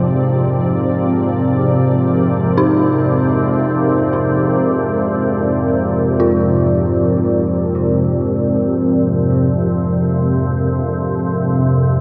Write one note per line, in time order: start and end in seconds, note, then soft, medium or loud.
0.00 12.01 F2 medium
0.00 12.01 G#2 medium
0.00 12.01 C3 medium
0.00 12.01 F3 medium
0.00 12.01 C4 medium
0.00 12.01 F4 medium
0.00 12.01 A#4 medium
0.00 12.01 D5 medium
2.57 8.78 D#4 medium
6.20 12.01 F4 soft